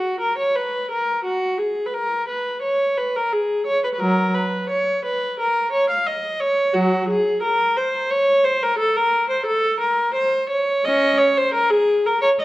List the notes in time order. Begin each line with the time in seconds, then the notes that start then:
Already playing: F#4
0.20 A#4
0.38 C#5
0.56 B4
0.91 A#4
1.25 F#4
1.58 G#4
1.86 B4
1.94 A#4
2.28 B4
2.62 C#5
2.98 B4
3.16 A#4
3.32 G#4
3.67 C#5
3.84 B4
3.94 B4
4.00 F#3 A#4
4.34 B4
4.70 C#5
5.05 B4
5.40 A#4
5.73 C#5
5.90 F5
6.06 D#5
6.40 C#5
6.74 F#3 F#4
7.09 G#4
7.43 A#4
7.76 C5
8.10 C#5
8.44 C5
8.63 A#4
8.79 A4
8.96 A#4
9.30 C5
9.46 A4
9.80 A#4
10.14 C5
10.50 C#5
10.85 C#4 D#5
11.18 C#5
11.38 C5
11.54 A#4
11.70 G#4
12.06 A#4
12.22 C#5
12.40 D#5